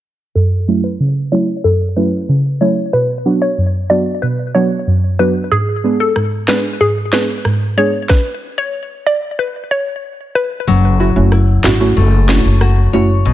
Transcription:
0.35 F#2 A4
0.67 F#3 A3 C#4 E4
0.84 B4
1.00 C#3
1.32 F#3 A3 C#4 E4 C#5
1.64 F#2 A4
1.96 F#3 A3 C#4 E4 B4
2.29 C#3
2.61 F#3 A3 C#4 E4 C#5
2.93 B2 B4
3.25 F#3 B3 D4 F#4
3.42 C#5
3.58 F#2
3.90 F#3 B3 D4 F#4 D5
4.22 B2 B4
4.55 F#3 B3 D4 F#4 C#5
4.87 F#2
5.19 F#3 B3 D4 F#4 B4
5.51 G#2 G#4
5.84 G#3 B3 D4 G#4
6.00 A4
6.16 G#2, cross-stick
6.48 G#3 B3 D4 G#4 B4, finger snap, snare
6.80 G#2 G#4
7.13 G#3 B3 D4 G#4 B4, finger snap, snare
7.45 G#2, cross-stick
7.77 G#3 B3 D4 G#4 C#5
8.09 B4, kick, snare
8.58 C#5
9.06 D5
9.39 B4
9.71 C#5
10.35 B4
10.67 F#1 F#3
10.99 E4 F#4
11.16 F#1 A3 C#4 E4 F#4
11.32 E4, cross-stick
11.64 G#1 E4 F#4, finger snap, snare
11.80 A3 C#4 E4 F#4
11.96 F#1 A3
12.28 A3 C#4 E4 F#4 C#5, finger snap, snare
12.45 F#1
12.61 F#4, cross-stick
12.93 F#1 A3 C#4 E4 F#4 C#5
13.25 B1 B2, closed hi-hat

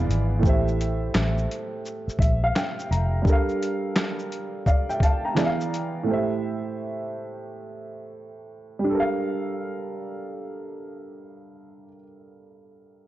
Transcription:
Already playing: D3 E3 B3 G#4 D5 F5
0.09 G#1, closed hi-hat, shaker
0.39 A2 A3
0.43 A1 G4 C5, kick, shaker
0.49 E5
0.68 shaker
0.81 closed hi-hat, shaker
1.15 A1, snare, clap, shaker
1.38 shaker
1.51 closed hi-hat, shaker
1.86 shaker
2.08 muted fingered electric bass stroke, shaker
2.19 A#1 E5, kick, closed hi-hat, shaker
2.44 F5
2.56 G5, snare, clap, shaker
2.79 shaker
2.91 F1 A#5, closed hi-hat, shaker
3.22 G3 D4, kick
3.27 A4 A#4, shaker
3.32 F5
3.49 shaker
3.63 closed hi-hat, shaker
3.96 snare, clap, shaker
4.19 shaker
4.32 closed hi-hat, shaker
4.66 D5 F5, kick, shaker
4.89 E5 G5, shaker
5.00 F5 A5, kick, closed hi-hat, shaker
5.25 G5 A#5
5.35 E3 B3 G#4 D5, snare, clap, shaker
5.40 E5
5.46 F5
5.61 shaker
5.74 closed hi-hat, shaker
6.03 A2 A3
6.08 G4 C5
6.13 E5
8.79 G3
8.84 D4
8.90 A4
8.95 A#4
9.00 F5

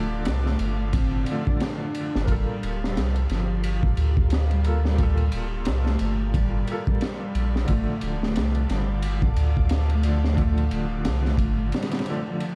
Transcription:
Already playing: D1 D3 F3 A3 A4 D5 F5 D6
0.25 C2, snare, ride
0.46 A3, snare
0.59 G1, ride
0.93 C4, kick, ride
1.24 D3 F3, ride
1.31 A3
1.46 D4, kick
1.60 snare, ride
1.81 D4
1.95 ride
2.16 G1, snare
2.25 G1 G3 A#3 F4 G4 D5, kick, ride
2.32 A4
2.63 D1, ride
2.83 G3, snare
2.96 C2, snare, ride
3.16 ride
3.29 G1 F3, snare, ride
3.64 ride
3.83 kick
3.97 D2, ride
4.17 kick
4.30 snare, ride
4.51 G3, ride
4.63 A#3 F4 A4, ride
4.85 G3, snare
4.96 A#2 F4, kick, ride
5.03 A4
5.17 ride
5.32 D1, ride
5.65 C2, snare, ride
5.86 A3, snare
5.99 G1, ride
6.34 G3, kick, ride
6.65 A#3 F4, ride
6.72 A4
6.87 G3, kick
7.01 snare, ride
7.21 G3
7.35 A#1, ride
7.56 snare
7.65 G1 D3 F3 A3 A4 F5 D6, kick, ride
7.72 A3
8.01 D1, ride
8.21 A3, snare
8.36 C2, snare, ride
8.55 ride
8.69 G1 G3, snare, ride
9.02 ride
9.22 kick
9.36 D2, ride
9.57 kick
9.69 snare, ride
9.90 A3, ride
10.02 D3 F3 A3, ride
10.24 A3, snare
10.35 D3 F3, kick, ride
10.41 A3
10.58 ride
10.71 D1, ride
11.05 C2, snare, ride
11.25 A3, snare
11.38 G1, kick, ride
11.72 G3, snare, ride
11.82 snare, ride
11.91 snare, ride
11.99 snare, ride
12.04 D3 F3, ride
12.10 A3
12.26 F3
12.40 ride

